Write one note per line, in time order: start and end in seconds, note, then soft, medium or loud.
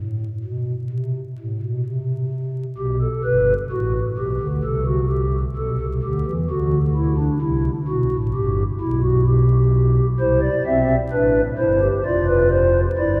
0.00 0.27 A2 medium
0.44 0.73 B2 medium
0.91 1.20 C3 medium
1.38 1.58 A2 medium
1.61 1.81 B2 medium
1.84 2.65 C3 medium
2.78 3.07 B1 medium
2.78 3.07 B2 medium
2.78 2.98 G4 medium
3.01 3.21 A4 medium
3.24 3.53 G1 medium
3.24 3.53 G2 medium
3.24 3.54 B4 medium
3.71 4.00 A1 medium
3.71 4.00 A2 medium
3.71 4.00 F#4 medium
4.17 4.37 B1 medium
4.17 4.38 B2 medium
4.17 4.46 G4 medium
4.40 4.60 D2 medium
4.40 4.60 D3 medium
4.64 5.44 C2 medium
4.64 5.44 C3 medium
4.64 4.84 A4 medium
4.87 5.07 F#4 medium
5.10 5.39 G4 medium
5.56 5.76 B1 medium
5.56 5.76 B2 medium
5.56 5.85 A4 medium
5.79 6.00 C2 medium
5.79 5.99 C3 medium
6.03 6.23 D2 medium
6.03 6.23 D3 medium
6.03 6.32 G4 medium
6.25 6.46 E2 medium
6.25 6.46 E3 medium
6.50 7.29 D2 medium
6.50 7.29 D3 medium
6.50 6.78 F#4 medium
6.95 7.15 E4 medium
7.17 7.38 D4 medium
7.41 7.70 C2 medium
7.41 7.70 C3 medium
7.41 7.70 E4 medium
7.88 8.08 B1 medium
7.88 8.08 B2 medium
7.88 8.17 F#4 medium
8.11 8.31 A1 medium
8.11 8.31 A2 medium
8.34 8.63 G1 medium
8.34 8.63 G2 medium
8.34 8.63 G4 medium
8.80 10.00 B1 medium
8.80 10.00 B2 medium
8.80 9.00 E4 medium
9.04 9.24 F#4 medium
9.27 10.07 G4 medium
10.20 10.49 C2 medium
10.20 10.49 C3 medium
10.20 10.48 E4 medium
10.20 10.40 C5 medium
10.42 10.62 D5 medium
10.66 10.95 B1 medium
10.66 10.95 B2 medium
10.66 10.95 C4 medium
10.66 10.95 E5 medium
11.12 11.41 A1 medium
11.12 11.41 A2 medium
11.12 11.41 D4 medium
11.12 11.41 B4 medium
11.58 11.87 G1 medium
11.58 11.87 G2 medium
11.58 11.79 E4 medium
11.58 11.87 C5 medium
11.81 12.02 G4 medium
12.05 12.85 F1 medium
12.05 12.86 F2 medium
12.05 12.86 F4 medium
12.05 12.25 D5 medium
12.28 12.48 B4 medium
12.51 12.80 C5 medium
12.97 13.20 G1 medium
12.97 13.20 G2 medium
12.97 13.18 E4 medium
12.97 13.20 D5 medium